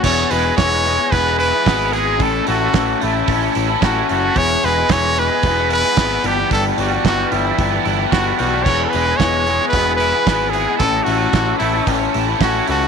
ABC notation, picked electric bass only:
X:1
M:4/4
L:1/8
Q:1/4=112
K:E
V:1 name="Picked electric bass" clef=bass
E,,, E,,, E,,,2 E,,,2 G,,,2 | A,,, A,,, A,,, A,,, A,,, A,,, A,,, F,,, | E,,, E,,, E,,,2 E,,,2 G,,, =G,,, | =G,,, G,,, G,,, G,,, G,,, G,,, G,,, B,,, |
E,,, E,,, E,,,2 E,,,2 G,,,2 | A,,, A,,, A,,, A,,, A,,, A,,, A,,, C,, |]